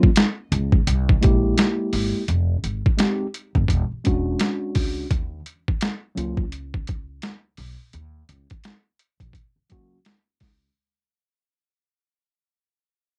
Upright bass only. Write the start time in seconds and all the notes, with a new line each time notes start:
0.52 C#2
0.87 C2
1.24 A#1
1.93 G#1
2.28 F1
2.64 G#1
3.55 G1
3.69 E1
3.91 muted upright bass stroke
4.07 E1
4.76 C#2
5.11 D#2
6.17 C#2
7.58 B1
7.94 D#2
8.29 C#2
9.20 A#1
9.56 muted upright bass stroke
9.72 C#2
10.41 C#2